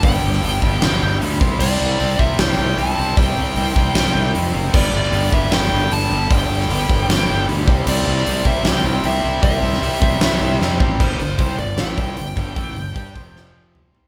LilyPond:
<<
  \new Staff \with { instrumentName = "Lead electric guitar" } { \time 4/4 \key g \mixolydian \tempo 4 = 153 g''2. r4 | d''4. e''8 g''4 a''4 | g''2. r4 | d''4. e''8 g''4 a''4 |
g''2. r4 | d''4. e''8 g''8 g''8 e''4 | e''2. r4 | c''4. d''8 g''2~ |
g''2. r4 | }
  \new Staff \with { instrumentName = "Tonewheel organ" } { \time 4/4 \key g \mixolydian r1 | r1 | r1 | <g d' a'>1~ |
<g d' a'>2.~ <g d' a'>8 <c' g' d''>8~ | <c' g' d''>1~ | <c' g' d''>1 | r1 |
r1 | }
  \new Staff \with { instrumentName = "Distorted electric guitar" } { \clef bass \time 4/4 \key g \mixolydian <g, d g>4 <g, d g>8 <g, d g>8 <g, d g>4 <g, d g>8 <c g c'>8 | <c g c'>4 <c g c'>8 <c g c'>8 <c g c'>4 <c g c'>8 <c g c'>8 | <c g c'>4 <c g c'>8 <c g c'>8 <c g c'>4 <c g c'>8 <c g c'>8 | <g, d g>4 <g, d g>8 <g, d g>8 <g, d g>4 <g, d g>8 <g, d g>8 |
<g, d g>4 <g, d g>8 <g, d g>8 <g, d g>4 <g, d g>8 <c g c'>8 | <c g c'>4 <c g c'>8 <c g c'>8 <c g c'>4 <c g c'>8 <c g c'>8 | <c g c'>4 <c g c'>8 <c g c'>8 <c g c'>4 <c g c'>8 <c g c'>8 | <g, d g>8 <g, d>8 <c g c'>8 <g, d>8 <a, e a>8 <c g c'>8 <g, d>8 <g, d g>8 |
<a, e a>8 <g, d>8 <g d' g'>8 <f, c f>2 <c g c'>8 | }
  \new Staff \with { instrumentName = "Distorted electric guitar" } { \clef bass \time 4/4 \key g \mixolydian <g, d g>4 <g, d g>8 <g, d g>8 <g, d g>4 <g, d g>8 <c g c'>8 | <c g c'>4 <c g c'>8 <c g c'>8 <c g c'>4 <c g c'>8 <c g c'>8 | <c g c'>4 <c g c'>8 <c g c'>8 <c g c'>4 <c g c'>8 <c g c'>8 | <g, d g>4 <g, d g>8 <g, d g>8 <g, d g>4 <g, d g>8 <g, d g>8 |
<g, d g>4 <g, d g>8 <g, d g>8 <g, d g>4 <g, d g>8 <c g c'>8 | <c g c'>4 <c g c'>8 <c g c'>8 <c g c'>4 <c g c'>8 <c g c'>8 | <c g c'>4 <c g c'>8 <c g c'>8 <c g c'>4 <c g c'>8 <c g c'>8 | <g, d g>8 <g, d>8 <c g c'>8 <g, d>8 <a, e a>8 <c g c'>8 <g, d>8 <g, d g>8 |
<a, e a>8 <g, d>8 <g d' g'>8 <f, c f>2 <c g c'>8 | }
  \new Staff \with { instrumentName = "Fingered electric bass" } { \clef bass \time 4/4 \key g \mixolydian g,,8 g,,8 g,,8 g,,8 g,,8 g,,8 d,8 c,8 | c,8 c,8 c,8 c,8 c,8 c,8 c,8 c,8 | c,8 c,8 c,8 c,8 c,8 c,8 f,8 fis,,8 | g,,8 g,,8 g,,8 g,,8 g,,8 g,,8 g,,8 g,,8 |
g,,8 g,,8 g,,8 g,,8 g,,8 g,,8 d,8 c,8 | c,8 c,8 c,8 c,8 c,8 c,8 c,8 c,8 | c,8 c,8 c,8 c,8 c,8 c,8 f,8 a,,8 | g,,8 g,,8 c,8 g,,8 a,,8 c,8 g,,8 g,,8 |
a,,8 g,,8 g,8 f,,2 c,8 | }
  \new DrumStaff \with { instrumentName = "Drums" } \drummode { \time 4/4 <hho bd>8. sn16 hho8 bd8 <hho sn>4 hho8 bd8 | cymc4 hho8 bd8 <hho sn>4 hho4 | <hho bd>4 hho8 bd8 <hho sn>4 hho4 | <cymc bd>8. sn16 hho8 bd8 <hho sn>4 hho4 |
<hho bd>8. sn16 hho8 bd8 <hho sn>4 hho8 bd8 | cymc8. sn16 hho8 bd8 <hho sn>4 hho4 | <hho bd>8. sn16 hho8 bd8 <hho sn>4 sn8 bd8 | <cymc bd>8 hho8 <hho bd>8 hho8 <hho sn>8 <hho bd>8 hho8 <hho bd>8 |
<hho bd>8 hho8 <hho bd>8 <hho bd>8 sn4 toml8 tomfh8 | }
>>